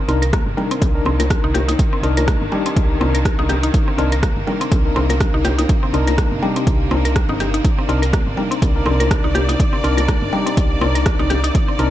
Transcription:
Already playing: C3 D#3 A#3
0.08 C2 C4 D4 D#4 A#4, closed hi-hat
0.22 A#4, closed hi-hat
0.33 A#3, kick, cross-stick, closed hi-hat
0.46 G1
0.57 G3 D4 D#4 A#4, low bongo
0.71 C4, closed hi-hat
0.81 C2, kick, closed hi-hat, low bongo
0.95 D4 D#4 A#4
1.05 C2 C4, low bongo
1.20 A#4, closed hi-hat, high bongo
1.30 kick, cross-stick, closed hi-hat, low bongo
1.44 C2 D#4
1.54 G4, closed hi-hat, high bongo
1.68 D#4, closed hi-hat, high bongo
1.79 kick, closed hi-hat
1.93 C4
2.03 C2 C4 D4 D#4 A#4, closed hi-hat
2.17 A#4, closed hi-hat, high bongo
2.28 A#3, kick, cross-stick, closed hi-hat
2.41 G1
2.52 G3 D4 D#4 G4, low bongo
2.66 C4, closed hi-hat
2.76 C2, kick, closed hi-hat
3.01 C2 C4 D4 D#4 A#4, high bongo
3.15 A#4, closed hi-hat
3.25 kick, cross-stick, closed hi-hat
3.39 C2 D#4, low bongo
3.49 G4, closed hi-hat, low bongo
3.63 D#4, closed hi-hat
3.74 kick, closed hi-hat
3.88 C4
3.98 C2 C4 D4 D#4 A#4, closed hi-hat
4.12 A#4, closed hi-hat
4.23 A#3, kick, cross-stick, closed hi-hat
4.37 G1
4.47 G3 D4 D#4 A#4, low bongo
4.61 C4, closed hi-hat
4.71 C2, kick, closed hi-hat, low bongo
4.85 D4 D#4 A#4
4.96 C2 C4, low bongo
5.09 A#4, closed hi-hat, high bongo
5.20 kick, cross-stick, closed hi-hat, low bongo
5.34 C2 D#4
5.44 G4, closed hi-hat, high bongo
5.58 D#4, closed hi-hat, high bongo
5.69 kick, closed hi-hat
5.83 C4
5.93 C2 C4 D4 D#4 A#4, closed hi-hat
6.07 A#4, closed hi-hat, high bongo
6.18 A#3, kick, cross-stick, closed hi-hat
6.32 G1
6.42 G3 D4 D#4 G4, low bongo
6.56 C4, closed hi-hat
6.67 C2, kick, closed hi-hat
6.91 C2 C4 D4 D#4 A#4, high bongo
7.05 A#4, closed hi-hat
7.16 kick, cross-stick, closed hi-hat
7.29 G1 D#4, low bongo
7.40 G4, closed hi-hat, low bongo
7.54 D#4, closed hi-hat
7.65 D5, kick, closed hi-hat
7.79 C4
7.89 C2 C4 D4 D#4 A#4, closed hi-hat
8.02 A#4, closed hi-hat
8.13 A#3, kick, cross-stick, closed hi-hat
8.27 G1
8.37 G3 D4 D#4 A#4, low bongo
8.51 C4, closed hi-hat
8.62 C2, kick, closed hi-hat, low bongo
8.76 D4 D#4 A#4
8.86 C2 C4, low bongo
9.00 A#4, closed hi-hat, high bongo
9.11 kick, cross-stick, closed hi-hat, low bongo
9.24 C2 D#4
9.35 G4, closed hi-hat, high bongo
9.49 D#4, closed hi-hat, high bongo
9.60 kick, closed hi-hat
9.73 C4
9.84 C2 C4 D4 D#4 A#4, closed hi-hat
9.97 A#4, closed hi-hat, high bongo
10.08 A#3, kick, cross-stick, closed hi-hat
10.22 G1
10.33 G3 D4 D#4 G4, low bongo
10.46 C4, closed hi-hat
10.57 C2, kick, closed hi-hat
10.81 C2 C4 D4 D#4 A#4, high bongo
10.95 A#4, closed hi-hat
11.06 kick, cross-stick, closed hi-hat
11.19 C2 D#4, low bongo
11.30 G4, closed hi-hat, low bongo
11.44 D#4, closed hi-hat
11.55 kick, closed hi-hat
11.68 C4
11.79 C2 C4 D4 D#4 A#4, closed hi-hat

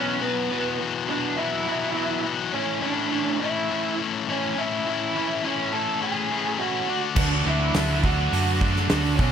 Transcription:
Already playing: B2 E3 F#3 B3 C#4 F#4 C#5
0.20 B2 E3 F#3 B3 F#4 B4
0.51 B2 E3 F#3 B3 F#4
0.80 B2 E3 F#3 B3 F#4
1.09 B2 E3 F#3 B3 D4 F#4 D5
1.37 B2 E3 F#3 B3 E4 E5
1.41 F#4
1.67 B2 E3 F#3 B3 F#4
1.95 B2 E3 F#3 B3 F#4
2.24 B2 E3 F#3 B3 F#4
2.53 A2 E3 A3 C#4 E4 C#5
2.81 A2 E3 A3 C#4 E4 D5
2.86 D4
3.11 A2 E3 A3 C#4 E4
3.25 C#5
3.39 A2 E3 A3 C#4 E4 E5
3.70 A2 E3 A3 C#4 E4
3.98 A2 E3 A3 C#4 E4
4.27 A2 E3 A3 C#4 E4 C#5
4.31 C#4
4.57 A2 E3 A3 C#4 E4 E5
4.86 A2 E3 A3 C#4 E4 E5
5.16 A2 E3 A3 C#4 E4
5.43 A2 E3 A3 C#4 E4 C#5
5.73 A2 E3 A3 C#4 E4 A4 A5
6.01 A2 E3 A3 C#4 E4 G#4 G#5
6.30 A2 E3 A3 C#4 E4
6.59 A2 E3 A3 C#4 E4 F#4 F#5
6.88 D3 A3 D4 F#4
7.15 D2 D3 F#3 A3 D4 F#4 D5, kick, crash
7.45 D2 D3 F#3 A3 D4 E4 F#4 E5
7.74 D2 D3 F#3 A3 D4 F#4, snare, open hi-hat
8.03 D3 F#3 A3 D4 F#4 F#5, kick
8.32 F#2 D3 F#3 A3 D4 F#4, open hi-hat
8.61 D3 F#3 A3 D4 F#4, kick
8.76 snare
8.89 D2 D3 F#3 A3 D4 D5, snare, open hi-hat
8.94 F#4
9.16 B2 C#4 C#5, kick
9.21 D3 F#3 A3 D4 F#4

